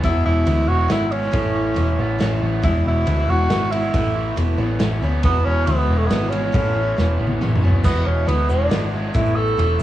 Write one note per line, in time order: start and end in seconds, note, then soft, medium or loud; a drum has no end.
0.00 0.23 E1 medium
0.00 0.47 E2 medium
0.00 0.46 E3 medium
0.00 0.68 B3 medium
0.00 kick loud
0.00 ride medium
0.04 0.47 B2 medium
0.04 0.45 E3 medium
0.04 0.45 G#3 medium
0.04 0.46 B3 medium
0.04 0.48 E4 medium
0.04 0.25 E4 medium
0.25 0.44 E1 medium
0.25 1.33 B2 medium
0.25 0.70 E4 loud
0.46 0.66 D2 medium
0.46 0.88 E3 medium
0.46 0.88 G#3 medium
0.46 0.90 B3 medium
0.46 0.91 E4 medium
0.46 ride medium
0.68 0.87 E1 medium
0.68 1.11 G#3 medium
0.68 0.90 F#4 loud
0.88 1.28 G#1 medium
0.88 1.31 E3 medium
0.88 1.32 G#3 medium
0.88 1.32 B3 medium
0.88 1.33 E4 medium
0.88 1.14 E4 medium
0.88 snare medium
0.88 ride medium
1.12 1.34 G#3 medium
1.12 2.42 C#4 medium
1.12 ride medium
1.31 1.72 A1 medium
1.31 1.76 A2 medium
1.31 1.74 E3 medium
1.31 1.75 B3 medium
1.31 1.75 C#4 medium
1.31 1.76 E4 medium
1.31 kick loud
1.31 ride medium
1.55 1.77 E3 medium
1.74 1.96 E1 medium
1.74 2.18 E3 medium
1.74 2.19 B3 medium
1.74 2.19 C#4 medium
1.74 2.20 E4 medium
1.74 ride soft
1.98 2.18 A1 medium
1.98 2.42 B3 medium
2.19 2.39 A1 medium
2.19 2.63 E3 medium
2.19 2.63 B3 medium
2.19 2.63 C#4 medium
2.19 2.64 E4 medium
2.19 snare medium
2.19 ride medium
2.42 2.61 A1 medium
2.42 3.28 B3 medium
2.62 2.83 E1 medium
2.62 3.06 E2 medium
2.62 3.06 B2 medium
2.62 3.05 E3 medium
2.62 3.05 G#3 medium
2.62 3.07 B3 medium
2.62 2.84 E4 medium
2.62 3.08 E4 medium
2.62 kick loud
2.62 ride medium
2.85 3.04 E1 medium
2.85 3.93 B2 medium
2.85 3.31 E4 medium
3.06 3.26 D2 medium
3.06 3.28 E3 medium
3.06 3.28 G#3 medium
3.06 3.28 B3 medium
3.06 3.27 E4 medium
3.06 ride medium
3.28 3.47 E1 medium
3.28 3.49 E3 soft
3.28 3.51 G#3 soft
3.28 3.50 B3 soft
3.28 3.50 E4 soft
3.28 3.73 F#4 loud
3.50 3.88 G#1 medium
3.50 3.72 E3 medium
3.50 3.73 G#3 medium
3.50 3.72 B3 medium
3.50 3.71 E4 medium
3.50 snare medium
3.50 ride medium
3.72 3.93 E3 soft
3.72 3.94 G#3 soft
3.72 3.94 B3 soft
3.72 4.37 E4 medium
3.72 3.94 E4 medium
3.72 ride medium
3.94 4.32 A1 medium
3.94 4.37 A2 medium
3.94 4.36 E3 medium
3.94 4.37 B3 medium
3.94 4.37 C#4 medium
3.94 4.39 E4 medium
3.94 kick loud
3.94 ride medium
4.15 4.36 E3 medium
4.36 4.56 E1 medium
4.36 4.58 E3 medium
4.36 4.58 B3 medium
4.36 4.57 C#4 medium
4.36 4.56 E4 medium
4.36 ride medium
4.58 4.77 A1 medium
4.58 4.79 B3 soft
4.58 4.80 C#4 soft
4.58 4.80 E4 medium
4.79 4.99 A1 medium
4.79 5.01 E3 medium
4.79 5.02 B3 medium
4.79 5.01 C#4 medium
4.79 5.01 E4 medium
4.79 snare medium
4.79 ride medium
5.01 5.21 D2 medium
5.01 5.23 B3 soft
5.01 5.24 C#4 medium
5.01 5.23 E4 medium
5.23 5.43 E1 medium
5.23 5.67 E2 medium
5.23 5.67 B2 medium
5.23 5.66 E3 medium
5.23 5.66 G#3 medium
5.23 5.67 B3 medium
5.23 5.46 B3 medium
5.23 5.68 E4 medium
5.23 kick loud
5.23 ride medium
5.45 5.64 E1 medium
5.45 6.53 B2 medium
5.45 5.67 C#4 loud
5.66 5.86 D2 medium
5.66 6.09 E3 medium
5.66 6.09 G#3 medium
5.66 5.99 B3 medium
5.66 6.10 B3 medium
5.66 6.10 E4 medium
5.66 ride medium
5.88 6.08 E1 medium
5.88 6.31 G#3 medium
5.97 6.08 A3 medium
6.06 6.31 E3 medium
6.06 6.31 G#3 medium
6.06 6.30 B3 medium
6.10 6.49 G#1 medium
6.10 6.31 B3 medium
6.10 6.30 E4 medium
6.10 snare medium
6.10 ride medium
6.29 6.53 G#3 soft
6.29 6.52 B3 soft
6.29 7.39 C#4 medium
6.29 6.53 E4 soft
6.29 ride soft
6.33 6.52 E3 soft
6.52 6.92 A1 medium
6.52 6.96 A2 medium
6.52 6.95 E3 medium
6.52 6.97 B3 medium
6.52 6.97 C#4 medium
6.52 6.97 E4 medium
6.52 kick loud
6.52 ride medium
6.76 6.96 E3 medium
6.97 7.17 E1 medium
6.97 7.40 E3 medium
6.97 7.41 B3 medium
6.97 7.41 C#4 medium
6.97 7.42 E4 medium
6.97 snare medium
7.18 7.38 A1 medium
7.18 7.61 B3 medium
7.27 high tom medium
7.40 7.59 A1 medium
7.40 7.63 E3 medium
7.40 7.63 B3 medium
7.40 7.63 C#4 medium
7.40 7.61 E4 medium
7.40 mid tom medium
7.55 mid tom medium
7.62 7.81 F#1 medium
7.62 7.84 B3 soft
7.62 7.85 C#4 soft
7.62 7.84 E4 medium
7.70 floor tom medium
7.84 8.03 E1 medium
7.84 8.27 E2 medium
7.84 8.28 B2 medium
7.84 8.27 E3 medium
7.84 8.27 G#3 medium
7.84 8.08 B3 medium
7.84 8.28 B3 medium
7.84 8.29 E4 medium
7.84 kick loud
7.84 crash medium
7.84 shaker medium
7.95 shaker soft
8.05 8.25 E1 medium
8.05 9.14 B2 medium
8.05 8.29 C#4 medium
8.17 shaker soft
8.27 8.46 D2 medium
8.27 8.69 E3 medium
8.27 8.69 G#3 medium
8.27 8.51 B3 medium
8.27 8.70 B3 medium
8.27 8.71 E4 medium
8.27 ride medium
8.49 8.68 E1 medium
8.49 8.93 G#3 medium
8.49 8.93 D4 medium
8.49 shaker medium
8.69 9.09 G#1 medium
8.69 9.14 E3 soft
8.69 9.14 G#3 medium
8.69 9.15 B3 medium
8.69 9.15 E4 medium
8.69 snare medium
8.69 ride medium
8.94 9.15 G#3 medium
9.14 9.53 A1 medium
9.14 9.57 A2 medium
9.14 9.57 E3 medium
9.14 9.58 B3 medium
9.14 9.58 C#4 medium
9.14 9.38 E4 medium
9.14 9.59 E4 medium
9.14 kick loud
9.14 ride medium
9.14 shaker medium
9.26 shaker soft
9.36 9.58 E3 medium
9.36 9.79 A4 loud
9.47 shaker soft
9.57 9.77 E1 medium
9.57 9.79 E3 medium
9.57 9.79 B3 medium
9.57 9.78 C#4 medium
9.57 9.77 E4 medium
9.57 ride medium
9.78 9.83 A1 medium
9.78 9.83 C#4 soft
9.78 9.83 E4 soft
9.78 shaker medium